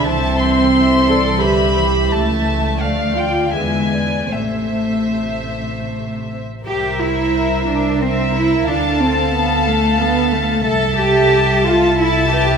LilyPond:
<<
  \new Staff \with { instrumentName = "Violin section" } { \time 3/4 \key a \minor \tempo 4 = 88 a''8 c'''4. b''4 | a''4 f''8 g''8 gis''4 | e''2~ e''8 r8 | e''2 e''4 |
a''2. | a''2 a''4 | }
  \new Staff \with { instrumentName = "Violin section" } { \time 3/4 \key a \minor << { e''4 e''8 d''8 e''4 | e''4 f''4 e''8 d''8 | c''2~ c''8 r8 | c''2 c''4 |
f''2. | e''2 e''4 | } \\ { a'4 a'4 b'8 c''8 | e''4 d''4 b'4 | c''2~ c''8 r8 | bes'2 bes'4 |
a'2. | a'2 a'8 b'8 | } >> }
  \new Staff \with { instrumentName = "Viola section" } { \time 3/4 \key a \minor c'4. a'8 g'4 | a4. f'8 gis4 | a2~ a8 r8 | g'8 e'4 d'8 c'8 e'8 |
d'8 c'8 b8 a8 b8 a8 | a'8 g'4 f'8 e'8 g'8 | }
  \new Staff \with { instrumentName = "Cello section" } { \time 3/4 \key a \minor e4 e4 d8 e8~ | e4 f8 d4. | c2~ c8 r8 | g'8 e'4 d'8 c'8 e'8 |
d'8 c'8 b8 a8 b8 a8 | a'8 g'4 f'8 e'8 g'8 | }
  \new Staff \with { instrumentName = "Double bass section" } { \clef bass \time 3/4 \key a \minor c,2. | cis,4 d,4 e,4 | a,,2~ a,,8 r8 | c,2. |
d,2. | c,2. | }
>>